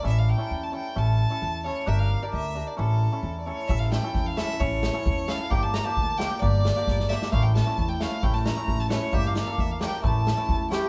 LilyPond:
<<
  \new Staff \with { instrumentName = "Violin" } { \time 2/4 \tempo 4 = 132 e''16 f''16 g''8. a''16 g''8 | a''4. cis''8 | e''16 f''8 d''16 e''8. d''16 | a'4~ a'16. d''32 cis''8 |
e''16 f''16 g''8. f''16 e''8 | cis''4. f''8 | g''16 a''16 bes''16 a''8. g''8 | d''4. e''8 |
f''16 g''16 a''8. g''16 f''8 | g''16 a''16 bes''8. a''16 cis''8 | e''16 f''16 f''8 e''16 f''16 g''8 | a''4. g''8 | }
  \new Staff \with { instrumentName = "Clarinet" } { \time 2/4 r2 | r2 | r2 | r2 |
r2 | r2 | r2 | r2 |
r2 | r2 | r2 | r4. g'8 | }
  \new Staff \with { instrumentName = "Hammered dulcimer" } { \time 2/4 <cis' e' a'>8 r16 <cis' e' a'>16 r8 <cis' e' a'>16 r16 | <cis' e' a'>8 r16 <cis' e' a'>16 r8 <cis' e' a'>16 r16 | <d' g' bes'>8 r16 <d' g' bes'>16 r8 <d' g' bes'>16 r16 | <cis' e' a'>8 r16 <cis' e' a'>16 r8 <cis' e' a'>16 r16 |
<cis' e' a'>8 r16 <cis' e' a'>16 r8 <cis' e' a'>16 r16 | <cis' e' a'>8 r16 <cis' e' a'>16 r8 <cis' e' a'>16 r16 | <bes d' g'>8 r16 <bes d' g'>16 r8 <bes d' g'>16 r16 | <bes d' g'>8 r16 <bes d' g'>16 r8 <bes d' g'>16 r16 |
<a cis' e'>8 r16 <a cis' e'>16 r8 <a cis' e'>16 r16 | <a cis' e'>8 r16 <a cis' e'>16 r8 <a cis' e'>16 r16 | <bes d' g'>8 r16 <bes d' a'>16 r8 <bes d' g'>16 r16 | <a cis' e'>8 r16 <a cis' e'>16 r8 <a cis' e'>16 r16 | }
  \new Staff \with { instrumentName = "Upright bass" } { \clef bass \time 2/4 a,,4 e,4 | a,,4 e,4 | g,,4 d,4 | a,,4 e,4 |
a,,4 e,4 | a,,4 e,4 | g,,4 d,4 | g,,4 g,,4 |
a,,4 e,4 | a,,4 a,,4 | g,,4 e,4 | a,,4 e,4 | }
  \new DrumStaff \with { instrumentName = "Drums" } \drummode { \time 2/4 r4 r4 | r4 r4 | r4 r4 | r4 r4 |
bd16 sn16 sn8 <bd sn>8 sn16 sn16 | bd8 sn8 bd8 sn8 | bd8 sn8 bd8 sn8 | bd8 sn8 <bd sn>16 sn16 sn16 sn16 |
bd8 sn8 bd8 sn8 | bd16 sn16 sn8 bd16 sn16 sn8 | bd16 sn16 sn8 bd8 sn16 sn16 | bd8 sn8 bd8 sn8 | }
>>